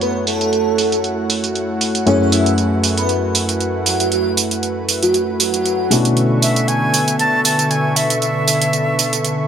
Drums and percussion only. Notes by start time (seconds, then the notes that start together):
0.01 closed hi-hat, tambourine
0.27 open hi-hat, tambourine
0.41 closed hi-hat, tambourine
0.53 closed hi-hat, tambourine
0.78 open hi-hat, tambourine
0.92 closed hi-hat, tambourine
1.04 closed hi-hat, tambourine
1.30 open hi-hat, tambourine
1.44 closed hi-hat, tambourine
1.55 closed hi-hat, tambourine
1.81 open hi-hat, tambourine
1.95 closed hi-hat, tambourine
2.07 closed hi-hat, tambourine
2.32 open hi-hat, tambourine
2.46 closed hi-hat, tambourine
2.58 closed hi-hat, tambourine
2.84 open hi-hat, tambourine
2.98 closed hi-hat, tambourine
3.09 closed hi-hat, tambourine
3.35 open hi-hat, tambourine
3.49 closed hi-hat, tambourine
3.60 closed hi-hat, tambourine
3.86 open hi-hat, tambourine
4.00 closed hi-hat, tambourine
4.12 closed hi-hat, tambourine
4.37 open hi-hat, tambourine
4.51 closed hi-hat, tambourine
4.63 closed hi-hat, tambourine
4.89 open hi-hat, tambourine
5.03 closed hi-hat, tambourine
5.14 closed hi-hat, tambourine
5.40 open hi-hat, tambourine
5.54 closed hi-hat, tambourine
5.66 closed hi-hat, tambourine
5.91 open hi-hat, tambourine
6.05 closed hi-hat, tambourine
6.17 closed hi-hat, tambourine
6.42 open hi-hat, tambourine
6.56 closed hi-hat, tambourine
6.68 closed hi-hat, tambourine
6.94 open hi-hat, tambourine
7.08 closed hi-hat, tambourine
7.19 closed hi-hat, tambourine
7.45 open hi-hat, tambourine
7.59 closed hi-hat, tambourine
7.71 closed hi-hat, tambourine
7.96 open hi-hat, tambourine
8.10 closed hi-hat, tambourine
8.22 closed hi-hat, tambourine
8.48 open hi-hat, tambourine
8.62 closed hi-hat, tambourine
8.73 closed hi-hat, tambourine
8.99 open hi-hat, tambourine
9.13 closed hi-hat, tambourine
9.25 closed hi-hat, tambourine